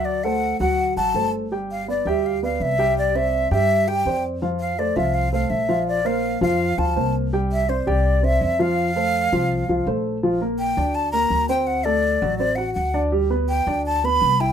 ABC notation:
X:1
M:4/4
L:1/16
Q:1/4=165
K:F
V:1 name="Flute"
d2 ^f4 f4 a4 z2 | z2 f2 d2 e2 f2 f2 e4 | d2 e4 e4 g4 z2 | z2 f2 d2 e2 f2 f2 e4 |
d2 f4 f4 a4 z2 | z2 e2 c2 d4 e4 f2- | f12 z4 | z4 g4 a2 b4 g2 |
^f2 d6 d2 f2 f3 z | z4 g4 a2 =b4 g2 |]
V:2 name="Grand piano"
[_G,_G_g]2 [A,Ac]4 [^F,^F^f]4 [F,Ff]2 [A,Ac]4 | [G,Gg]4 [=B,=Bd]2 [G,Gg]4 [B,Bd]4 [G,Gg]2- | [G,Gg]2 [Ccd]4 [G,Gg]4 [G,Gg]2 [Ccd]4 | [F,Ff]4 [A,Ac]2 [F,Ff]4 [A,Ac]4 [F,Ff]2- |
[F,Ff]2 [B,Bc]4 [F,Ff]4 [F,Ff]2 [B,Bc]4 | [G,Gg]4 [Ccd]2 [G,Gg]4 [Ccd]4 [F,Ff]2- | [F,Ff]2 [A,Ac]4 [F,Ff]4 [F,Ff]2 [A,Ac]4 | [F,F]2 [B,B]4 [Dd]4 [B,B]4 [Cc]2- |
[Cc]2 [A,A]4 [^F,^F]2 [Cc]2 [F^f]4 [Dd]2 | [G,G]2 [=B,=B]4 [Dd]4 [B,B]4 [Ee]2 |]
V:3 name="Upright bass" clef=bass
D,,6 D,,4 A,,,2 G,,,4- | G,,,6 D,,6 C,,4- | C,,6 G,,6 F,,4- | F,,6 C,,6 B,,,4- |
B,,,6 F,,4 D,,2 C,,4- | C,,6 C,,6 F,,4- | F,,6 C,,4 C,,2 B,,,4- | B,,,6 D,,6 D,,4- |
D,,6 A,,,6 D,,4- | D,,6 D,,6 C,,4 |]